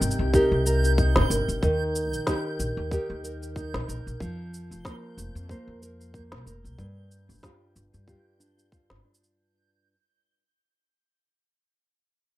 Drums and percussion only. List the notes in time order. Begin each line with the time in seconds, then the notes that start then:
0.02 cabasa
0.11 cabasa
0.34 kick, cabasa
0.66 cabasa
0.84 cabasa
0.98 kick, cabasa
1.16 snare
1.31 cabasa
1.49 cabasa
1.63 kick, cabasa
1.95 cabasa
2.13 cabasa
2.27 kick, snare, cabasa
2.60 cabasa
2.91 kick, cabasa
3.25 cabasa
3.43 cabasa
3.56 kick, cabasa
3.74 snare
3.89 cabasa
4.08 cabasa
4.20 kick, cabasa
4.54 cabasa
4.72 cabasa
4.85 kick, snare, cabasa
5.18 cabasa
5.36 cabasa
5.49 kick, cabasa
5.83 cabasa
6.01 cabasa
6.14 kick, cabasa
6.32 snare
6.47 cabasa
6.65 cabasa
6.79 kick, cabasa
7.11 cabasa
7.30 cabasa
7.32 cabasa
7.34 cabasa
7.36 cabasa
7.40 cabasa
7.42 kick, snare, cabasa
7.44 cabasa
7.76 cabasa
7.94 cabasa
8.08 kick, cabasa
8.41 cabasa
8.59 cabasa
8.72 kick, cabasa
8.90 snare
9.14 cabasa
9.24 cabasa